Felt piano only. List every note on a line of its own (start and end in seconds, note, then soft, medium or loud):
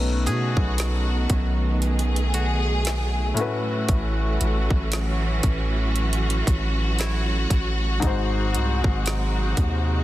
0.00 3.32 B2 medium
0.00 3.32 A3 medium
0.00 3.33 C#4 medium
0.00 3.34 D#4 medium
0.00 3.35 B4 medium
3.34 7.45 A2 medium
3.34 7.46 A3 medium
3.34 7.47 C#4 medium
3.39 7.48 F#4 medium
3.39 7.49 B4 medium
8.00 10.04 G#2 medium
8.00 10.04 G#3 medium
8.00 10.04 D#4 medium
8.05 10.04 F#4 medium
8.05 10.04 C5 medium